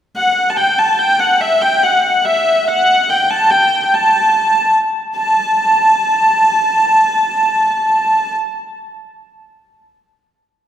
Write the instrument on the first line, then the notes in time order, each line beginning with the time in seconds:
hurdy-gurdy
0.16 F#5
0.50 A5
0.57 G5
0.79 A5
0.99 G5
1.20 F#5
1.41 E5
1.61 G5
1.83 F#5
2.25 E5
2.68 F#5
3.09 G5
3.31 A5
3.51 G5
3.83 G5
3.94 A5
5.16 A5